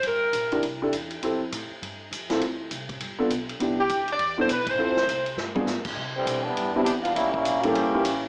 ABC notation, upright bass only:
X:1
M:4/4
L:1/8
Q:"Swing" 1/4=202
K:C
V:1 name="Upright bass" clef=bass
G,,,2 _B,,,2 C,,2 E,,2 | F,,2 A,, z G,,2 F,,2 | D,,2 C,,2 G,,,2 B,,,2 | C,,2 D,,2 E,,2 B,,,2 |
D,,2 C,,2 G,,2 _A,, z | C,2 B,,2 G,,2 E,,2 | A,,,2 _B,,,2 G,,,2 A,,,2 |]